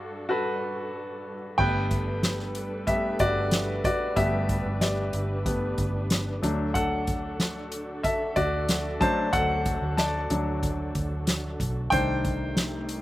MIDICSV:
0, 0, Header, 1, 5, 480
1, 0, Start_track
1, 0, Key_signature, 1, "major"
1, 0, Tempo, 645856
1, 1182, Time_signature, 4, 2, 24, 8
1, 9674, End_track
2, 0, Start_track
2, 0, Title_t, "Grand piano"
2, 0, Program_c, 0, 0
2, 0, Control_c, 0, 64, 127
2, 0, Note_on_c, 0, 43, 70
2, 0, Note_on_c, 0, 66, 93
2, 0, Note_on_c, 0, 69, 77
2, 0, Note_on_c, 0, 74, 98
2, 214, Note_off_c, 0, 66, 0
2, 214, Note_on_c, 0, 66, 84
2, 219, Note_off_c, 0, 69, 0
2, 219, Note_on_c, 0, 69, 70
2, 227, Note_on_c, 0, 71, 82
2, 993, Note_off_c, 0, 66, 0
2, 996, Note_off_c, 0, 69, 0
2, 1000, Note_off_c, 0, 71, 0
2, 1173, Note_on_c, 0, 79, 94
2, 1176, Note_on_c, 0, 55, 53
2, 1180, Note_on_c, 0, 57, 47
2, 1184, Note_on_c, 0, 59, 61
2, 1187, Note_on_c, 0, 71, 74
2, 1192, Control_c, 0, 64, 0
2, 1197, Note_off_c, 0, 74, 0
2, 1199, Note_off_c, 0, 43, 0
2, 1328, Control_c, 0, 64, 127
2, 1498, Note_off_c, 0, 55, 0
2, 1500, Note_off_c, 0, 57, 0
2, 1502, Note_off_c, 0, 59, 0
2, 2107, Note_off_c, 0, 79, 0
2, 2114, Note_off_c, 0, 71, 0
2, 2130, Note_on_c, 0, 55, 48
2, 2133, Note_on_c, 0, 76, 87
2, 2135, Note_on_c, 0, 57, 38
2, 2139, Note_on_c, 0, 59, 47
2, 2142, Note_on_c, 0, 67, 64
2, 2351, Note_off_c, 0, 55, 0
2, 2354, Note_off_c, 0, 57, 0
2, 2356, Note_off_c, 0, 59, 0
2, 2365, Note_off_c, 0, 67, 0
2, 2379, Note_on_c, 0, 74, 103
2, 2384, Note_off_c, 0, 76, 0
2, 2384, Note_on_c, 0, 66, 72
2, 2830, Note_off_c, 0, 74, 0
2, 2833, Note_off_c, 0, 66, 0
2, 2860, Note_on_c, 0, 74, 86
2, 2867, Note_on_c, 0, 66, 68
2, 3083, Note_off_c, 0, 74, 0
2, 3087, Note_off_c, 0, 66, 0
2, 3090, Note_on_c, 0, 55, 54
2, 3093, Note_on_c, 0, 57, 52
2, 3094, Note_on_c, 0, 76, 92
2, 3098, Note_on_c, 0, 59, 60
2, 3100, Note_on_c, 0, 67, 72
2, 3414, Note_off_c, 0, 55, 0
2, 3416, Note_off_c, 0, 57, 0
2, 3418, Note_off_c, 0, 59, 0
2, 3547, Note_off_c, 0, 76, 0
2, 3550, Note_off_c, 0, 67, 0
2, 3576, Note_on_c, 0, 74, 63
2, 3581, Note_on_c, 0, 67, 52
2, 4050, Note_on_c, 0, 55, 43
2, 4056, Note_on_c, 0, 57, 40
2, 4057, Note_on_c, 0, 59, 55
2, 4270, Note_off_c, 0, 55, 0
2, 4273, Note_off_c, 0, 57, 0
2, 4274, Note_off_c, 0, 59, 0
2, 4748, Note_off_c, 0, 74, 0
2, 4750, Note_off_c, 0, 67, 0
2, 4774, Note_on_c, 0, 54, 58
2, 4775, Note_on_c, 0, 57, 60
2, 4782, Note_on_c, 0, 62, 63
2, 4789, Control_c, 0, 64, 0
2, 4935, Control_c, 0, 64, 127
2, 5010, Note_on_c, 0, 78, 88
2, 5023, Note_on_c, 0, 69, 75
2, 5951, Note_off_c, 0, 69, 0
2, 5971, Note_on_c, 0, 76, 89
2, 5980, Note_on_c, 0, 69, 61
2, 6004, Note_off_c, 0, 78, 0
2, 6203, Note_off_c, 0, 69, 0
2, 6213, Note_on_c, 0, 74, 94
2, 6218, Note_on_c, 0, 66, 76
2, 6223, Note_off_c, 0, 76, 0
2, 6667, Note_off_c, 0, 54, 0
2, 6668, Note_off_c, 0, 57, 0
2, 6669, Note_off_c, 0, 66, 0
2, 6671, Note_off_c, 0, 62, 0
2, 6690, Note_on_c, 0, 54, 65
2, 6694, Note_on_c, 0, 81, 107
2, 6696, Note_on_c, 0, 57, 52
2, 6700, Note_on_c, 0, 62, 64
2, 6701, Note_on_c, 0, 72, 85
2, 6711, Note_off_c, 0, 74, 0
2, 6924, Note_off_c, 0, 72, 0
2, 6932, Note_on_c, 0, 78, 108
2, 6940, Note_on_c, 0, 69, 77
2, 6944, Note_off_c, 0, 81, 0
2, 7390, Note_off_c, 0, 69, 0
2, 7413, Note_on_c, 0, 81, 84
2, 7423, Note_on_c, 0, 74, 62
2, 7431, Note_off_c, 0, 78, 0
2, 7644, Note_off_c, 0, 57, 0
2, 7645, Note_off_c, 0, 54, 0
2, 7649, Note_off_c, 0, 62, 0
2, 7656, Note_on_c, 0, 54, 55
2, 7656, Note_on_c, 0, 57, 43
2, 7660, Note_on_c, 0, 62, 57
2, 7874, Note_off_c, 0, 54, 0
2, 7874, Note_off_c, 0, 57, 0
2, 7876, Note_off_c, 0, 62, 0
2, 8588, Note_off_c, 0, 81, 0
2, 8593, Note_off_c, 0, 74, 0
2, 8846, Note_on_c, 0, 79, 102
2, 8855, Note_on_c, 0, 51, 60
2, 8858, Note_on_c, 0, 57, 47
2, 8864, Note_on_c, 0, 62, 59
2, 8864, Note_on_c, 0, 72, 79
2, 8871, Control_c, 0, 64, 0
2, 9025, Control_c, 0, 64, 127
2, 9178, Note_off_c, 0, 51, 0
2, 9179, Note_off_c, 0, 57, 0
2, 9182, Note_off_c, 0, 62, 0
2, 9674, Note_off_c, 0, 72, 0
2, 9674, Note_off_c, 0, 79, 0
2, 9674, End_track
3, 0, Start_track
3, 0, Title_t, "String section"
3, 0, Program_c, 1, 48
3, 0, Note_on_c, 1, 55, 59
3, 0, Note_on_c, 1, 62, 55
3, 0, Note_on_c, 1, 66, 56
3, 0, Note_on_c, 1, 69, 65
3, 1152, Note_off_c, 1, 55, 0
3, 1156, Note_off_c, 1, 66, 0
3, 1157, Note_off_c, 1, 62, 0
3, 1158, Note_off_c, 1, 69, 0
3, 1181, Note_on_c, 1, 62, 66
3, 1181, Note_on_c, 1, 69, 64
3, 1183, Note_on_c, 1, 55, 66
3, 1184, Note_on_c, 1, 71, 73
3, 3081, Note_off_c, 1, 69, 0
3, 3097, Note_on_c, 1, 67, 61
3, 4750, Note_off_c, 1, 55, 0
3, 4751, Note_off_c, 1, 71, 0
3, 4761, Note_off_c, 1, 67, 0
3, 4780, Note_on_c, 1, 50, 60
3, 4781, Note_on_c, 1, 69, 68
3, 4784, Note_on_c, 1, 66, 60
3, 8831, Note_off_c, 1, 62, 0
3, 8832, Note_off_c, 1, 50, 0
3, 8832, Note_off_c, 1, 69, 0
3, 8834, Note_off_c, 1, 66, 0
3, 8858, Note_on_c, 1, 55, 58
3, 8859, Note_on_c, 1, 51, 78
3, 8860, Note_on_c, 1, 48, 69
3, 8860, Note_on_c, 1, 57, 62
3, 9674, Note_off_c, 1, 48, 0
3, 9674, Note_off_c, 1, 51, 0
3, 9674, Note_off_c, 1, 55, 0
3, 9674, Note_off_c, 1, 57, 0
3, 9674, End_track
4, 0, Start_track
4, 0, Title_t, "Fingered electric bass"
4, 0, Program_c, 2, 33
4, 1180, Note_on_c, 2, 31, 104
4, 2350, Note_off_c, 2, 31, 0
4, 2377, Note_on_c, 2, 31, 90
4, 2829, Note_off_c, 2, 31, 0
4, 3097, Note_on_c, 2, 31, 103
4, 3433, Note_off_c, 2, 31, 0
4, 3461, Note_on_c, 2, 31, 83
4, 3795, Note_off_c, 2, 31, 0
4, 3819, Note_on_c, 2, 31, 80
4, 4269, Note_off_c, 2, 31, 0
4, 4298, Note_on_c, 2, 31, 88
4, 4749, Note_off_c, 2, 31, 0
4, 4778, Note_on_c, 2, 38, 79
4, 6189, Note_off_c, 2, 38, 0
4, 6218, Note_on_c, 2, 38, 90
4, 6669, Note_off_c, 2, 38, 0
4, 6936, Note_on_c, 2, 38, 100
4, 7273, Note_off_c, 2, 38, 0
4, 7297, Note_on_c, 2, 38, 82
4, 7633, Note_off_c, 2, 38, 0
4, 7660, Note_on_c, 2, 38, 88
4, 8111, Note_off_c, 2, 38, 0
4, 8139, Note_on_c, 2, 38, 90
4, 8591, Note_off_c, 2, 38, 0
4, 8619, Note_on_c, 2, 35, 77
4, 8843, Note_off_c, 2, 35, 0
4, 8860, Note_on_c, 2, 36, 96
4, 9674, Note_off_c, 2, 36, 0
4, 9674, End_track
5, 0, Start_track
5, 0, Title_t, "Drums"
5, 1180, Note_on_c, 9, 36, 96
5, 1180, Note_on_c, 9, 49, 88
5, 1255, Note_off_c, 9, 36, 0
5, 1255, Note_off_c, 9, 49, 0
5, 1418, Note_on_c, 9, 42, 58
5, 1421, Note_on_c, 9, 36, 74
5, 1492, Note_off_c, 9, 42, 0
5, 1495, Note_off_c, 9, 36, 0
5, 1657, Note_on_c, 9, 38, 97
5, 1660, Note_on_c, 9, 42, 76
5, 1732, Note_off_c, 9, 38, 0
5, 1734, Note_off_c, 9, 42, 0
5, 1778, Note_on_c, 9, 38, 33
5, 1852, Note_off_c, 9, 38, 0
5, 1894, Note_on_c, 9, 42, 80
5, 1968, Note_off_c, 9, 42, 0
5, 2136, Note_on_c, 9, 42, 66
5, 2137, Note_on_c, 9, 36, 86
5, 2210, Note_off_c, 9, 42, 0
5, 2211, Note_off_c, 9, 36, 0
5, 2372, Note_on_c, 9, 42, 65
5, 2377, Note_on_c, 9, 36, 84
5, 2447, Note_off_c, 9, 42, 0
5, 2452, Note_off_c, 9, 36, 0
5, 2611, Note_on_c, 9, 42, 93
5, 2615, Note_on_c, 9, 38, 127
5, 2686, Note_off_c, 9, 42, 0
5, 2689, Note_off_c, 9, 38, 0
5, 2857, Note_on_c, 9, 36, 92
5, 2860, Note_on_c, 9, 42, 78
5, 2931, Note_off_c, 9, 36, 0
5, 2935, Note_off_c, 9, 42, 0
5, 3096, Note_on_c, 9, 42, 83
5, 3097, Note_on_c, 9, 36, 93
5, 3170, Note_off_c, 9, 42, 0
5, 3171, Note_off_c, 9, 36, 0
5, 3337, Note_on_c, 9, 42, 56
5, 3338, Note_on_c, 9, 36, 86
5, 3411, Note_off_c, 9, 42, 0
5, 3413, Note_off_c, 9, 36, 0
5, 3575, Note_on_c, 9, 38, 104
5, 3578, Note_on_c, 9, 42, 84
5, 3649, Note_off_c, 9, 38, 0
5, 3652, Note_off_c, 9, 42, 0
5, 3813, Note_on_c, 9, 42, 77
5, 3888, Note_off_c, 9, 42, 0
5, 4057, Note_on_c, 9, 36, 91
5, 4058, Note_on_c, 9, 42, 78
5, 4131, Note_off_c, 9, 36, 0
5, 4132, Note_off_c, 9, 42, 0
5, 4294, Note_on_c, 9, 42, 60
5, 4297, Note_on_c, 9, 36, 71
5, 4369, Note_off_c, 9, 42, 0
5, 4372, Note_off_c, 9, 36, 0
5, 4536, Note_on_c, 9, 42, 104
5, 4539, Note_on_c, 9, 38, 121
5, 4610, Note_off_c, 9, 42, 0
5, 4613, Note_off_c, 9, 38, 0
5, 4782, Note_on_c, 9, 42, 86
5, 4856, Note_off_c, 9, 42, 0
5, 5018, Note_on_c, 9, 36, 87
5, 5018, Note_on_c, 9, 42, 87
5, 5092, Note_off_c, 9, 42, 0
5, 5093, Note_off_c, 9, 36, 0
5, 5257, Note_on_c, 9, 42, 59
5, 5260, Note_on_c, 9, 36, 81
5, 5331, Note_off_c, 9, 42, 0
5, 5334, Note_off_c, 9, 36, 0
5, 5496, Note_on_c, 9, 38, 101
5, 5499, Note_on_c, 9, 42, 75
5, 5570, Note_off_c, 9, 38, 0
5, 5573, Note_off_c, 9, 42, 0
5, 5735, Note_on_c, 9, 42, 78
5, 5810, Note_off_c, 9, 42, 0
5, 5977, Note_on_c, 9, 36, 80
5, 5977, Note_on_c, 9, 42, 76
5, 6051, Note_off_c, 9, 36, 0
5, 6052, Note_off_c, 9, 42, 0
5, 6214, Note_on_c, 9, 42, 55
5, 6218, Note_on_c, 9, 36, 79
5, 6288, Note_off_c, 9, 42, 0
5, 6292, Note_off_c, 9, 36, 0
5, 6455, Note_on_c, 9, 42, 104
5, 6459, Note_on_c, 9, 38, 127
5, 6530, Note_off_c, 9, 42, 0
5, 6533, Note_off_c, 9, 38, 0
5, 6697, Note_on_c, 9, 36, 101
5, 6702, Note_on_c, 9, 42, 74
5, 6771, Note_off_c, 9, 36, 0
5, 6776, Note_off_c, 9, 42, 0
5, 6935, Note_on_c, 9, 42, 85
5, 6936, Note_on_c, 9, 36, 99
5, 7009, Note_off_c, 9, 42, 0
5, 7011, Note_off_c, 9, 36, 0
5, 7176, Note_on_c, 9, 42, 66
5, 7178, Note_on_c, 9, 36, 89
5, 7250, Note_off_c, 9, 42, 0
5, 7253, Note_off_c, 9, 36, 0
5, 7416, Note_on_c, 9, 38, 101
5, 7418, Note_on_c, 9, 42, 86
5, 7490, Note_off_c, 9, 38, 0
5, 7493, Note_off_c, 9, 42, 0
5, 7657, Note_on_c, 9, 42, 83
5, 7731, Note_off_c, 9, 42, 0
5, 7898, Note_on_c, 9, 36, 81
5, 7900, Note_on_c, 9, 42, 69
5, 7973, Note_off_c, 9, 36, 0
5, 7974, Note_off_c, 9, 42, 0
5, 8138, Note_on_c, 9, 42, 64
5, 8140, Note_on_c, 9, 36, 70
5, 8212, Note_off_c, 9, 42, 0
5, 8214, Note_off_c, 9, 36, 0
5, 8376, Note_on_c, 9, 42, 101
5, 8380, Note_on_c, 9, 38, 127
5, 8451, Note_off_c, 9, 42, 0
5, 8454, Note_off_c, 9, 38, 0
5, 8620, Note_on_c, 9, 36, 83
5, 8625, Note_on_c, 9, 42, 73
5, 8695, Note_off_c, 9, 36, 0
5, 8699, Note_off_c, 9, 42, 0
5, 8860, Note_on_c, 9, 36, 98
5, 8860, Note_on_c, 9, 42, 91
5, 8934, Note_off_c, 9, 42, 0
5, 8935, Note_off_c, 9, 36, 0
5, 9101, Note_on_c, 9, 42, 61
5, 9102, Note_on_c, 9, 36, 84
5, 9175, Note_off_c, 9, 42, 0
5, 9177, Note_off_c, 9, 36, 0
5, 9338, Note_on_c, 9, 38, 108
5, 9341, Note_on_c, 9, 42, 74
5, 9413, Note_off_c, 9, 38, 0
5, 9415, Note_off_c, 9, 42, 0
5, 9578, Note_on_c, 9, 42, 79
5, 9652, Note_off_c, 9, 42, 0
5, 9674, End_track
0, 0, End_of_file